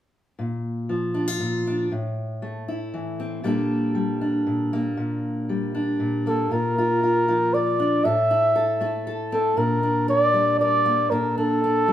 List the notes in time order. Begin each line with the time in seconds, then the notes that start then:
0.39 A#2
0.89 F3
1.14 D4
1.28 F4
1.40 A#2
1.67 D4
1.92 A2
2.42 A3
2.68 E4
2.94 E3
3.20 C4
3.44 A#2 G3 A#3 D4 A4
3.95 G3
4.21 D4
4.46 A#2
4.73 A#3
4.97 A#2
5.49 G3
5.75 D4
6.00 A#2
6.27 A#3 A4
6.51 A#2 F4 A#4
6.78 F4
7.03 F4
7.28 F3 F4
7.54 A#4 D5
7.79 D4
8.04 A2 A4 E5
8.31 E4
8.56 A4
8.81 A3 E4
9.07 A4
9.32 C4 A4
9.57 A#2 D4 A#4
9.83 D4
10.08 A#4 D5
10.34 G3 D4
10.60 A#4 D5
10.86 A#3
11.10 A#2 A4 A#4
11.38 D4 A4
11.64 D4
11.88 G3 D4